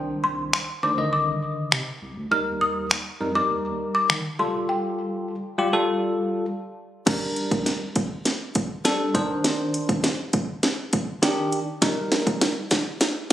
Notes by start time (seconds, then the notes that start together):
Already playing: C2 D#3 D4 C5 G5
0.24 C2 C6
0.53 C6, finger snap
0.83 D2 D#3 D4 C5 D6
0.98 D3 D#3 D#5
1.13 C2 D6
1.72 C3, finger snap
2.02 C2
2.17 D2
2.31 D#2 G3 D#4 A#4 F6
2.61 D#2 D#6
2.91 finger snap
3.20 F2 G3 D#4 A#4
3.35 G3 D#4 A#4 D6
3.50 D#2
3.95 D6
4.10 D#3, finger snap
4.39 F1 G3 F4 A4 C6
4.54 D#1
4.69 G5
5.58 G3 F4 G4
5.73 G3 F4 A4
7.06 G3 D4 A#4, kick, snare, closed hi-hat, crash
7.36 closed hi-hat
7.51 kick, closed hi-hat
7.66 snare, closed hi-hat
7.96 kick, closed hi-hat
8.25 snare, closed hi-hat
8.55 kick, closed hi-hat
8.85 G3 D4 A4, snare, closed hi-hat
9.14 D#3 D4 C5, kick, closed hi-hat
9.44 snare, closed hi-hat
9.74 closed hi-hat
9.89 kick, closed hi-hat
10.04 snare, closed hi-hat
10.33 kick, closed hi-hat
10.63 snare, closed hi-hat
10.93 kick, closed hi-hat
11.22 D#3 D4 G4, snare, closed hi-hat
11.52 closed hi-hat
11.82 G3 D#4 A#4, kick, snare, closed hi-hat
12.12 snare, closed hi-hat
12.27 kick, closed hi-hat
12.41 snare, closed hi-hat
12.71 kick, snare, closed hi-hat
13.01 snare, closed hi-hat